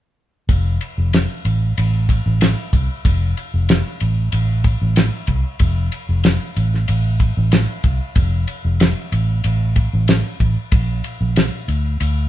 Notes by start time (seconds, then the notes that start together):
0.49 F1, kick, ride
0.81 ride
0.98 F1
1.13 snare, ride
1.45 A1, ride
1.78 A1, ride
2.09 kick, ride
2.26 A1
2.41 snare, ride
2.73 C2, kick, ride
3.05 F1, kick, ride
3.37 ride
3.54 F1
3.69 snare, ride
4.00 A1, ride
4.32 A1, ride
4.64 kick, ride
4.82 A1
4.96 snare, ride
5.27 C2, kick, ride
5.59 F1, kick, ride
5.92 ride
6.09 F1
6.24 snare, ride
6.56 A1, ride
6.74 snare
6.88 A1, ride
7.20 kick, ride
7.37 A1
7.52 snare, ride
7.84 C2, kick, ride
8.15 F1, kick, ride
8.47 ride
8.65 F1
8.80 snare, ride
9.12 A1, ride
9.44 A1, ride
9.76 kick, ride
9.93 A1
10.08 snare, ride
10.40 A1, kick, ride
10.72 A#1, kick, ride
11.04 ride
11.21 A#1
11.36 snare, ride
11.68 D2, ride
12.00 D2, ride